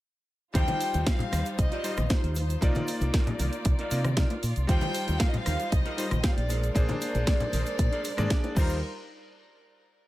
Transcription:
0.54 D#2 G3 D#4 F4 G4 C5 G5, kick, closed hi-hat, shaker
0.68 closed hi-hat, high bongo, high conga
0.81 open hi-hat, shaker
0.94 D#2, closed hi-hat, high bongo, shaker
1.06 D#4 F4 G4 C5 F5, kick, snare, closed hi-hat, shaker
1.19 closed hi-hat, low conga
1.32 D#2 D#4 F4 G4 C5, cross-stick, open hi-hat, high conga, shaker
1.46 closed hi-hat, shaker
1.58 C2 D#5, muted clean electric guitar stroke, kick, closed hi-hat, shaker
1.71 D#4 F4 G4 D5, closed hi-hat
1.84 G3 D#4 F4 C5, open hi-hat, shaker
1.97 A#1, cross-stick, closed hi-hat, high conga, shaker
2.09 D#4 F4 G4 C5, kick, snare, closed hi-hat, shaker
2.24 D#2, closed hi-hat
2.35 C5, open hi-hat, high bongo, shaker
2.50 closed hi-hat, shaker
2.61 C2 A#3 D#4 F4 A#4 D5, kick, closed hi-hat, shaker
2.75 closed hi-hat, high bongo, high conga, low conga
2.88 open hi-hat, shaker
3.01 C2, closed hi-hat, high bongo, shaker
3.13 D#4 F4 A#4 D5, kick, snare, closed hi-hat, shaker
3.27 closed hi-hat, low conga
3.39 C2 D#4 F4 A#4 D5, open hi-hat, high conga, shaker
3.53 closed hi-hat, shaker
3.65 C2, kick, closed hi-hat, shaker
3.79 D#4 F4 A#4 D5, closed hi-hat
3.91 C3 A#3 D#4 F4 D5, open hi-hat, shaker
4.04 cross-stick, closed hi-hat, high conga, shaker
4.17 D#4 F4 A#4 D5, kick, snare, closed hi-hat, shaker
4.30 closed hi-hat, high bongo
4.43 A#2, open hi-hat, shaker
4.56 C2, closed hi-hat, shaker
4.67 D#2 G3 D#4 F4 G4 C5 G5, kick, closed hi-hat, shaker
4.81 closed hi-hat, high bongo, high conga
4.94 open hi-hat, shaker
5.08 D#2, closed hi-hat, high bongo, shaker
5.20 D#4 F4 G4 A#4 F5, kick, snare, closed hi-hat, shaker
5.28 D#5
5.34 F5, closed hi-hat, low conga
5.46 D#2 D#4 F4 G4 A#4, cross-stick, open hi-hat, high conga, shaker
5.60 closed hi-hat, shaker
5.72 C2 D#5, kick, closed hi-hat, shaker
5.85 D#4 F4 G4 A#4, closed hi-hat
5.97 G3 D#4 F4 C5, open hi-hat, shaker
6.11 A#1, cross-stick, closed hi-hat, high conga, shaker
6.21 D#4 F4 G4 C5 F5 G5, kick, snare, closed hi-hat, shaker
6.37 A#1 D5, closed hi-hat
6.49 G#3 D4 G#4 A#4 C5, open hi-hat, high bongo, shaker
6.63 closed hi-hat, shaker
6.75 A#1 A#3 D4 G#4 C5 D5, kick, closed hi-hat, shaker
6.89 closed hi-hat, high bongo, high conga, low conga
7.01 open hi-hat, shaker
7.15 A#1, closed hi-hat, high bongo, shaker
7.27 D4 G#4 A#4 D5, kick, snare, closed hi-hat, shaker
7.40 closed hi-hat, low conga
7.53 A#1 D4 G#4 A#4 C5, open hi-hat, high conga, shaker
7.66 closed hi-hat, shaker
7.78 A#2, kick, closed hi-hat, shaker
7.92 D4 G#4 A#4 C5, closed hi-hat
8.04 open hi-hat, shaker
8.17 G#2 A#3 D4 G#4 D5, cross-stick, closed hi-hat, high conga, shaker
8.30 D4 G#4 A#4 D5, kick, snare, closed hi-hat, shaker
8.44 closed hi-hat, high bongo
8.55 D#2 G3 D#4 F4 G4 A#4 C5, kick, crash, shaker
8.69 shaker

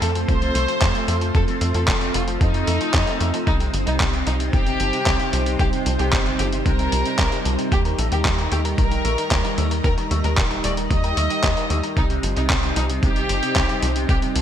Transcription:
Already playing: A3 C4 F4 C5
0.02 F2 A3 A4, closed hi-hat
0.15 F3, closed hi-hat
0.28 C2 F3 C5, kick, closed hi-hat
0.42 F2, closed hi-hat
0.55 C2 A3, closed hi-hat
0.68 F3, closed hi-hat
0.82 F2 F3, kick, clap, closed hi-hat
0.95 F2, closed hi-hat
1.08 F2 A3, closed hi-hat
1.21 F3, closed hi-hat
1.35 F2 F3 A4, kick, closed hi-hat
1.48 F2, closed hi-hat
1.61 F2 A3, closed hi-hat
1.74 F2 F3 A4, closed hi-hat
1.88 F1 F3, kick, clap, closed hi-hat
2.01 F2, closed hi-hat
2.14 F1 A3 F4, closed hi-hat
2.28 F3, closed hi-hat
2.41 F2 F3 D#4, kick, closed hi-hat
2.54 F2, closed hi-hat
2.67 F2 A3, closed hi-hat
2.81 F3, closed hi-hat
2.94 F2 F3, kick, clap, closed hi-hat
3.07 F2, closed hi-hat
3.21 F2 A3, closed hi-hat
3.34 F3, closed hi-hat
3.47 C2 C3 G3 D#4 C5, kick, closed hi-hat
3.60 C3, closed hi-hat
3.74 G1 F3, closed hi-hat
3.87 C2 C3 D#4, closed hi-hat
4.00 C2 C3, kick, clap, closed hi-hat
4.13 C3, closed hi-hat
4.27 C2 F3 D#4, closed hi-hat
4.40 C3, closed hi-hat
4.53 G1 C3 G4, kick, closed hi-hat
4.66 C3, closed hi-hat
4.80 G1 F3, closed hi-hat
4.93 C3, closed hi-hat
5.06 C2 C3, kick, clap, closed hi-hat
5.20 C3, closed hi-hat
5.33 C2 F3, closed hi-hat
5.46 C3, closed hi-hat
5.59 C2 C3 G4, kick, closed hi-hat
5.73 C3, closed hi-hat
5.86 C2 F3, closed hi-hat
5.99 C2 C3 G4, closed hi-hat
6.13 G1 C3, kick, clap, closed hi-hat
6.26 C3, closed hi-hat
6.39 G1 F3 G4, closed hi-hat
6.52 C3, closed hi-hat
6.65 C2 C3 A#4, kick, closed hi-hat
6.79 C3, closed hi-hat
6.92 C2 F3, closed hi-hat
7.06 C3, closed hi-hat
7.19 C2 C3, kick, clap, closed hi-hat
7.32 C3, closed hi-hat
7.45 C2 F3, closed hi-hat
7.59 C3, closed hi-hat
7.72 D#2 D#3 D#4 G4 A#5, kick, closed hi-hat
7.85 D#3, closed hi-hat
7.99 A#1 A3, closed hi-hat
8.12 D#2 D#3 G4, closed hi-hat
8.25 D#2 D#3, kick, clap, closed hi-hat
8.38 D#3, closed hi-hat
8.52 D#2 A3 G4, closed hi-hat
8.65 D#3, closed hi-hat
8.78 A#1 D#3 A#4, kick, closed hi-hat
8.91 D#3, closed hi-hat
9.05 A#1 A3, closed hi-hat
9.18 D#3, closed hi-hat
9.31 D#2 D#3, kick, clap, closed hi-hat
9.45 D#3, closed hi-hat
9.58 D#2 A3, closed hi-hat
9.71 D#3, closed hi-hat
9.84 D#2 D#3 D#4 A#4, kick, closed hi-hat
9.98 D#3, closed hi-hat
10.11 D#2 A3, closed hi-hat
10.24 D#2 D#3 A#4, closed hi-hat
10.37 D#1 D#3, kick, clap, closed hi-hat
10.51 D#3, closed hi-hat
10.64 D#1 A3 D5, closed hi-hat
10.77 D#3, closed hi-hat
10.90 D#2 D#3 D#5, kick, closed hi-hat
11.04 D#3, closed hi-hat
11.17 D#2 A3, closed hi-hat
11.30 D#3, closed hi-hat
11.44 D#2 D#3, kick, clap, closed hi-hat
11.57 D#3, closed hi-hat
11.70 D#2 A3, closed hi-hat
11.83 D#3, closed hi-hat
11.97 C2 C3 C4 D#4 C5, kick, closed hi-hat
12.10 C3, closed hi-hat
12.23 G1 F3, closed hi-hat
12.36 C2 C3 D#4, closed hi-hat
12.50 C2 C3, kick, clap, closed hi-hat
12.63 C3, closed hi-hat
12.76 C2 F3 D#4, closed hi-hat
12.89 C3, closed hi-hat
13.03 G1 C3 G4, kick, closed hi-hat
13.16 C3, closed hi-hat
13.29 G1 F3, closed hi-hat
13.43 C3, closed hi-hat
13.56 C2 C3, kick, clap, closed hi-hat
13.69 C3, closed hi-hat
13.82 C2 F3, closed hi-hat
13.96 C3, closed hi-hat
14.09 C2 C3 G4, kick, closed hi-hat
14.22 C3, closed hi-hat
14.36 C2 F3, closed hi-hat

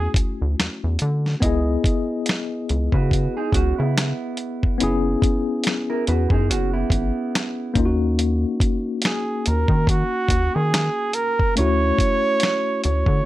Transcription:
Already playing: A3 C#4 E4 F#4 G#4
0.14 D2, kick, closed hi-hat
0.42 D2
0.60 E2, finger snap, snare, closed hi-hat
0.84 E2
0.99 D3, closed hi-hat
1.26 snare
1.40 C#2 B3 E4 D#5, kick, closed hi-hat
1.46 G#4
1.84 kick, closed hi-hat
2.26 snare, closed hi-hat
2.30 finger snap
2.69 C#2, closed hi-hat
2.92 C#3 F#4 B4, kick
3.11 kick, closed hi-hat
3.37 D#4 G#4
3.52 C#2 C#4 F#4, kick, closed hi-hat
3.78 C#3 B3 E4
3.98 finger snap, snare, closed hi-hat
4.37 closed hi-hat
4.63 kick
4.78 B3 C#4 E4, closed hi-hat
4.83 F#1 G#4
5.22 kick, closed hi-hat
5.64 snare, closed hi-hat
5.68 finger snap
5.90 E4 A#4
6.07 E2 F#4 B4, closed hi-hat
6.30 F#2 D#4 G#4, kick
6.50 F#1 C#4 F#4, closed hi-hat
6.73 B3 E4
6.90 G#1, kick, closed hi-hat
7.35 finger snap, snare, closed hi-hat
7.74 D#2 A#3 C#4 D#4, kick, closed hi-hat
7.79 F4
7.85 F#4
8.19 closed hi-hat
8.60 kick, closed hi-hat
9.02 G#4, snare, closed hi-hat
9.06 finger snap
9.46 D#2 A#4, closed hi-hat
9.68 D#3, kick
9.87 F#4, kick, closed hi-hat
10.29 D#2, kick, closed hi-hat
10.55 D#3 G#4
10.74 finger snap, snare, closed hi-hat
11.13 A#4, closed hi-hat
11.39 kick
11.56 D2 A3 C#4 E4 C#5, closed hi-hat
11.60 F#4
11.99 kick, closed hi-hat
12.40 snare, closed hi-hat
12.44 finger snap
12.84 D2 C#5, closed hi-hat
13.06 D3, kick

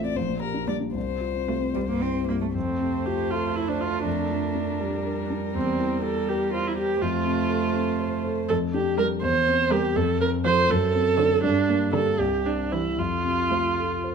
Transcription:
Already playing: A1 A2 C4 F4
0.03 C4 D5
0.15 A#1 C5
0.28 A#2
0.41 G4 A#4
0.54 D4
0.67 A#2 G3 D4 D5
0.80 D4
0.94 C2 C5
1.07 C3
1.21 F4
1.34 C4
1.47 C3 A3 F4
1.60 C4
1.74 C2 G3
1.87 G2 A#3
2.01 C4 E4
2.15 C4
2.27 G2 A#3 E4
2.41 A3 C4
2.54 F2 A3 C4 C5
2.81 C3
3.05 F4 G4
3.31 F4 A4
3.56 E4 C5
3.68 D4
3.80 F4
4.05 F2 D4 A#4
4.30 F3
4.55 D4
4.80 G3 G4
5.05 A#4
5.30 D4
5.55 E2 C4
5.79 E3
6.03 G4 A4
6.29 G4 A#4
6.53 F4 C5
6.67 E4
6.77 G4
7.01 F2 A3 F4 C5
7.26 C3
7.50 A4
7.75 C4
8.00 C5
8.25 A4
8.49 F2 A4
8.74 D4 G4
8.98 G3 G4 A#4
9.22 E2 C5
9.47 C4
9.71 G3 G4 A#4
9.96 F2 A4
10.20 C4 A#4
10.45 F3 F4 A4 C5
10.70 F#2 A4
10.95 C4
11.18 D3 D4 A4 C5
11.44 G2 D4
11.69 A#3
11.93 D3 D4 G4 A4 A#4
12.19 C2 G4
12.45 C4 D4
12.71 E3 E4 G4 C5
12.98 F2 F4
13.24 C3
13.51 A3 F4 C5
13.78 A4
14.04 C5

